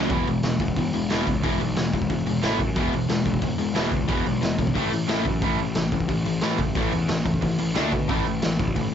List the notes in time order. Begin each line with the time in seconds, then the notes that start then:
Already playing: C#2 F#2 C#3 F#3 A3 C#4
0.10 E1 E2 B2 E3 G#3 B3, kick, open hi-hat
0.27 E1 E2 B2 E3 G#3, open hi-hat
0.43 E1 E2 B2 E3 G#3, snare, open hi-hat
0.59 E1 E2 B2 E3 G#3, kick, open hi-hat
0.68 kick
0.76 E1 E2 B2 E3 G#3, kick, open hi-hat
0.93 E1 E2 B2 E3 G#3, open hi-hat
1.10 E1 E2 B2 E3 G#3 B3, snare, open hi-hat
1.26 C#2 E2 B2 E3 G#3, kick, open hi-hat
1.42 E1 E2 B2 E3 G#3 B3, kick, open hi-hat
1.60 B1 E2 B2 E3 G#3, open hi-hat
1.76 E1 E2 B2 E3 G#3, snare, open hi-hat
1.93 E1 E2 B2 E3 G#3, kick, open hi-hat
2.02 kick
2.10 E1 E2 B2 E3 G#3, kick, open hi-hat
2.27 E1 E2 B2 E3 G#3, open hi-hat
2.43 A1 A2 E3 A3, snare, open hi-hat
2.59 F#2 A2 E3, kick, open hi-hat
2.76 E1 E2 B2 E3 G#3 B3, kick, open hi-hat
2.92 E1 E2 B2 E3 G#3, open hi-hat
3.09 E1 E2 B2 E3 G#3, snare, open hi-hat
3.25 E1 E2 B2 E3 G#3, kick, open hi-hat
3.34 kick
3.42 E1 E2 B2 E3 G#3, kick, open hi-hat
3.58 E1 E2 B2 E3 G#3, open hi-hat
3.74 E1 E2 B2 E3 G#3 B3, snare, open hi-hat
3.91 C#2 E2 B2 E3 G#3, kick, open hi-hat
4.08 E1 E2 B2 E3 G#3 B3, kick, open hi-hat
4.25 B1 E2 B2 E3 G#3, open hi-hat
4.41 E1 E2 B2 E3 G#3, snare, open hi-hat
4.58 E1 E2 B2 E3 G#3, kick, open hi-hat
4.67 kick
4.74 A1 A2 E3 A3, kick, open hi-hat
4.92 A1 A2 E3, open hi-hat
5.08 A1 A2 E3 A3, snare, open hi-hat
5.25 F#2 A2 E3, kick, open hi-hat
5.42 A1 A2 E3 A3, kick, open hi-hat
5.58 A1 A2 E3, open hi-hat
5.75 A1 A2 E3, snare, open hi-hat
5.92 A1 A2 E3, kick, open hi-hat
6.00 kick
6.08 A1 A2 E3, kick, open hi-hat
6.25 A1 A2 E3, open hi-hat
6.41 A1 A2 E3 A3, snare, open hi-hat
6.58 F#1 A2 E3, kick, open hi-hat
6.75 A1 A2 E3 A3, kick, open hi-hat
6.92 E2 A2 E3, open hi-hat
7.08 A1 A2 E3, snare, open hi-hat
7.25 A1 A2 E3, kick, open hi-hat
7.34 kick
7.42 A1 A2 E3, kick, open hi-hat
7.58 A1 A2 E3, open hi-hat
7.75 D2 D3 A3 D4, snare, open hi-hat
7.91 B2 D3 A3, kick, open hi-hat
8.08 A1 A2 E3 A3, kick, open hi-hat
8.24 A1 A2 E3, open hi-hat
8.42 A1 A2 E3, snare, open hi-hat
8.59 A1 A2 E3, kick, open hi-hat
8.68 kick
8.76 A1 A2 E3, kick, open hi-hat